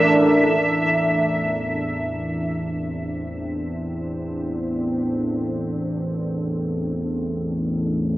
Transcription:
Already playing: synth drone A1 E2, ambient pad D4 E4 A4 A#4, synth texture E5
0.59 synth drone A1 E2, ambient pad C4
3.60 ambient pad A4

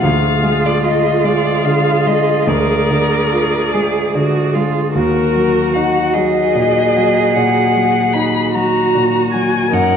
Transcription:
0.03 grand piano D2, cello F4, viola G#4, violin F5
0.43 grand piano G#3
0.66 violin D5
0.84 grand piano F4, violin D#5
1.24 grand piano G#3, violin D5
1.65 grand piano D3, violin F5
2.06 grand piano G#3, violin D#5
2.47 grand piano D2, cello A#4, violin D5
2.90 grand piano D3
3.32 grand piano F4
3.73 grand piano G#3, cello G#4
4.14 grand piano D3, cello F#4
4.54 grand piano G#3, cello F4
4.94 grand piano D#2, cello F#4, viola F#4, violin A#4
5.35 grand piano F#3
5.74 grand piano D#4, violin F#5
6.14 grand piano F#3, cello G#4, violin D#5
6.55 grand piano A#2
6.96 grand piano F#3
7.34 grand piano A#2, violin F#5
7.75 grand piano F#3
8.13 grand piano D#4, violin B5
8.54 grand piano F#3, cello F#4, violin A#5
8.95 grand piano A#2
9.34 grand piano F#3, violin G#5
9.72 grand piano F#2, viola D#4, cello A#4, violin F#5

